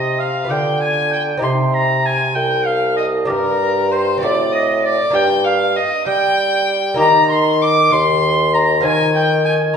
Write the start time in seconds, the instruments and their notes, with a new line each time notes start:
Already playing: bassoon C3, lute C3 C4 D#4 G4, oboe D#5, violin D#5
0.19 oboe F5, violin F5
0.45 lute B3 F4 G4
0.49 lute D3, bassoon D3, oboe G5, violin G5
0.81 oboe G#5, violin G#5
1.11 oboe G5, violin G5
1.37 lute C4 D#4 G4
1.42 lute C3, bassoon C3, violin C6, oboe C6
1.74 oboe A#5, violin A#5
2.05 oboe G#5, violin G#5
2.35 bassoon C2, violin G5, oboe G5
2.65 violin F5, oboe F5
2.96 oboe D#5, violin D#5
3.25 lute D4 G4, oboe A#4, violin A#4
3.30 lute G2, bassoon G2
3.92 violin C5, oboe C5
4.18 lute C4 D4 F#4, violin D5
4.22 lute A2, bassoon A2, oboe D5
4.52 violin D#5, oboe D#5
4.83 violin D5, oboe D5
5.10 lute G2 A#3 D4 G4, violin G5
5.15 bassoon G2, oboe G5
5.45 violin F5, oboe F5
5.76 oboe D#5, violin D#5
6.06 lute G3, bassoon G3, oboe G5, violin G5
6.94 lute A#3 D#4 G4
6.99 bassoon D#3, lute D#3, violin A#5, oboe A#5
7.30 violin C6, oboe C6
7.62 violin D6, oboe D6
7.91 lute D#2, bassoon D#2, oboe C6, violin C6
8.53 oboe A#5, violin A#5
8.80 lute D#3 F4 C5, bassoon D#3, violin G#5, oboe G#5
9.15 violin G5, oboe G5
9.45 oboe G#5, violin G#5
9.74 lute F4